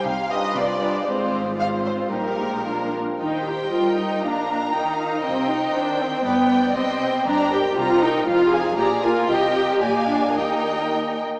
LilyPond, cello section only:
\new Staff \with { instrumentName = "Cello section" } { \clef bass \time 2/4 \key g \phrygian \tempo 4 = 118 c4 c4 | \key ees \major aes,2 | bes,4. r8 | ees4 g4 |
bes,4 ees4 | c4 ees4 | g,4 c4 | g,4 c4 |
f,4 bes,4 | c4 bes,4 | ees,4. r8 | }